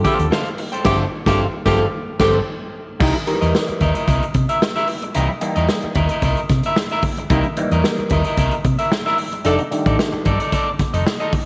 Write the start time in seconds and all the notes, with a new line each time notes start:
Already playing: D3 F3 A3 C4
0.04 G4 A4 C5 F5, kick, snare, closed hi-hat
0.19 D#2, muted clean electric guitar stroke, closed hi-hat
0.31 A4 C5 F5, snare
0.46 closed hi-hat
0.58 muted clean electric guitar stroke, open hi-hat
0.72 A4 C5 G5, closed hi-hat
0.84 G1 D3 F3 A3 C4 G4 A4 C5 G5, kick, snare, crash
1.26 G1 D3 F3 A3 C4 G4 A4 C5 F5, kick, snare
1.66 G1 D3 F3 A3 C4 G4 A4 C5 F5, kick, snare
2.19 G1 D3 F3 A3 C4 G4 A4 C5 G5, kick, snare, crash
3.00 C2 E3 G3 A#3 D#4 E4 A#4 D#5, kick, crash
3.14 muted clean electric guitar stroke, closed hi-hat
3.27 D#3 G3 A#3 D#4, muted clean electric guitar stroke, closed hi-hat
3.33 E3
3.41 E2 E4 A#4 D#5, closed hi-hat
3.55 muted clean electric guitar stroke, snare
3.68 muted clean electric guitar stroke, muted fingered electric bass stroke, closed hi-hat
3.80 D#2 E4 A#4 D#5, kick, closed hi-hat
3.95 E4 A#4 D#5, closed hi-hat
4.07 C2 E4 A#4 D#5, kick, closed hi-hat
4.23 closed hi-hat
4.34 C3, muted clean electric guitar stroke, kick, closed hi-hat
4.49 E4 A#4 E5, closed hi-hat
4.62 snare
4.76 E4 A#4 E5, snare, closed hi-hat
4.88 muted clean electric guitar stroke, open hi-hat
5.02 muted clean electric guitar stroke, closed hi-hat
5.14 C2 E3 G3 A#3 D#4 E4 A#4 D#5, closed hi-hat
5.30 muted clean electric guitar stroke
5.41 E3 G3 A#3 D#4, muted clean electric guitar stroke, closed hi-hat
5.56 E2 E4 A#4 D#5, closed hi-hat
5.69 snare
5.82 muted fingered electric bass stroke, muted clean electric guitar stroke, closed hi-hat
5.95 D#2 E4 A#4 D#5, kick, closed hi-hat
6.09 E4 A#4 D#5, closed hi-hat
6.22 C2 E4 A#4 D#5, kick, closed hi-hat
6.37 closed hi-hat
6.49 C3, muted clean electric guitar stroke, kick, snare, closed hi-hat
6.63 E4 A#4 E5, closed hi-hat
6.76 snare
6.90 E4 A#4 E5, snare, closed hi-hat
7.02 muted clean electric guitar stroke, kick, open hi-hat
7.17 muted clean electric guitar stroke, closed hi-hat
7.30 C2 E3 G3 A#3 D#4 E4 A#4 D#5, kick, closed hi-hat
7.43 muted clean electric guitar stroke, closed hi-hat
7.57 E3 G3 A#3 D#4, muted clean electric guitar stroke, closed hi-hat
7.71 E2 E4 A#4 D#5, closed hi-hat
7.84 muted clean electric guitar stroke, snare
7.98 muted fingered electric bass stroke, muted clean electric guitar stroke, closed hi-hat
8.10 D#2 E4 A#4 D#5, kick, closed hi-hat
8.24 E4 A#4 D#5, closed hi-hat
8.37 C2 E4 A#4 D#5, kick, closed hi-hat
8.51 closed hi-hat
8.64 C3, muted clean electric guitar stroke, kick, closed hi-hat
8.79 E4 A#4 E5, closed hi-hat
8.92 muted clean electric guitar stroke, snare
9.06 E4 A#4 E5, snare
9.18 muted clean electric guitar stroke, open hi-hat
9.33 muted clean electric guitar stroke, closed hi-hat
9.44 F1 D#3 G3 A3 D4 D#4 A4 D5, closed hi-hat
9.59 muted clean electric guitar stroke, closed hi-hat
9.71 D#3 G3 A3 D4, muted clean electric guitar stroke, closed hi-hat
9.86 A1 D#4 A4 D5, kick, closed hi-hat
9.98 muted clean electric guitar stroke, snare
10.12 muted clean electric guitar stroke, muted fingered electric bass stroke
10.25 G1 D#4 A4 D5, kick, closed hi-hat
10.40 D#4 A4 D5, closed hi-hat
10.52 D#4 A4 D5, kick, closed hi-hat
10.79 muted fingered electric bass stroke, muted clean electric guitar stroke, kick, snare, closed hi-hat
10.94 F1 D#4 A4 D#5, closed hi-hat
11.06 muted clean electric guitar stroke, snare
11.20 D#4 A4 D#5, closed hi-hat
11.33 muted clean electric guitar stroke, kick, open hi-hat